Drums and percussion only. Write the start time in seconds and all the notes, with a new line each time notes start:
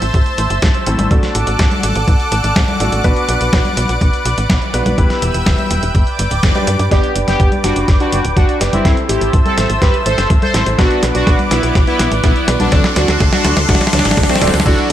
0.02 closed hi-hat
0.14 kick, closed hi-hat
0.26 closed hi-hat
0.38 closed hi-hat
0.50 closed hi-hat
0.62 kick, snare, closed hi-hat
0.74 closed hi-hat
0.87 closed hi-hat
0.99 closed hi-hat, high conga
1.11 kick, closed hi-hat
1.23 snare, closed hi-hat
1.35 closed hi-hat
1.47 closed hi-hat
1.59 kick, snare, closed hi-hat
1.71 closed hi-hat, high conga
1.83 closed hi-hat
1.96 closed hi-hat
2.08 kick, closed hi-hat
2.20 closed hi-hat
2.32 closed hi-hat
2.44 closed hi-hat
2.56 kick, snare, closed hi-hat
2.68 closed hi-hat, high conga
2.80 closed hi-hat
2.92 closed hi-hat
3.04 kick, closed hi-hat
3.17 closed hi-hat
3.29 closed hi-hat
3.41 closed hi-hat
3.53 kick, snare, closed hi-hat
3.65 closed hi-hat, high conga
3.77 closed hi-hat
3.89 closed hi-hat
4.01 kick, closed hi-hat
4.13 closed hi-hat
4.25 closed hi-hat
4.38 closed hi-hat
4.50 kick, snare, closed hi-hat
4.62 closed hi-hat
4.74 closed hi-hat
4.86 closed hi-hat, high conga
4.98 kick, closed hi-hat
5.10 snare, closed hi-hat
5.22 closed hi-hat
5.34 closed hi-hat
5.46 kick, snare, closed hi-hat
5.59 closed hi-hat, high conga
5.71 closed hi-hat
5.83 closed hi-hat
5.95 kick, closed hi-hat
6.07 closed hi-hat
6.19 closed hi-hat
6.31 closed hi-hat
6.43 kick, snare, closed hi-hat
6.55 closed hi-hat, high conga
6.67 closed hi-hat
6.79 closed hi-hat
6.91 kick, snare, closed hi-hat
7.04 closed hi-hat
7.16 closed hi-hat
7.28 snare, closed hi-hat
7.40 kick, closed hi-hat
7.52 closed hi-hat, high conga
7.64 snare, closed hi-hat
7.76 closed hi-hat
7.88 kick, snare, closed hi-hat
8.00 closed hi-hat
8.12 closed hi-hat
8.25 closed hi-hat
8.37 kick, closed hi-hat
8.49 closed hi-hat
8.61 snare, closed hi-hat
8.73 closed hi-hat, high conga
8.85 kick, snare, closed hi-hat
8.97 closed hi-hat
9.09 closed hi-hat
9.21 closed hi-hat
9.33 kick, closed hi-hat
9.46 closed hi-hat, high conga
9.58 snare, closed hi-hat
9.70 closed hi-hat
9.82 kick, snare, closed hi-hat
9.94 closed hi-hat
10.06 closed hi-hat
10.18 snare, closed hi-hat
10.30 kick, closed hi-hat
10.42 closed hi-hat, high conga
10.54 snare, closed hi-hat
10.66 closed hi-hat
10.79 kick, snare, closed hi-hat
10.91 closed hi-hat
11.03 snare, closed hi-hat
11.15 closed hi-hat
11.27 kick, snare, closed hi-hat
11.39 closed hi-hat, high conga
11.51 snare, closed hi-hat
11.63 closed hi-hat
11.75 kick, snare, closed hi-hat
11.87 closed hi-hat
11.99 snare, closed hi-hat
12.12 closed hi-hat
12.24 kick, snare, closed hi-hat
12.36 closed hi-hat
12.48 snare, closed hi-hat
12.60 closed hi-hat, high conga
12.72 kick, snare, closed hi-hat
12.84 snare, closed hi-hat
12.96 snare, closed hi-hat
13.08 snare, closed hi-hat
13.20 kick, snare, closed hi-hat
13.33 snare, closed hi-hat, high conga
13.45 snare, closed hi-hat
13.57 snare, closed hi-hat
13.69 kick, snare, closed hi-hat
13.75 snare
13.81 snare, closed hi-hat
13.87 snare
13.93 snare, closed hi-hat
13.99 snare
14.05 snare, closed hi-hat
14.11 snare
14.17 kick, snare, closed hi-hat
14.23 snare
14.29 snare, closed hi-hat, high conga
14.35 snare
14.41 snare, closed hi-hat
14.47 snare
14.54 snare, closed hi-hat
14.60 snare
14.66 kick, closed hi-hat, crash
14.78 closed hi-hat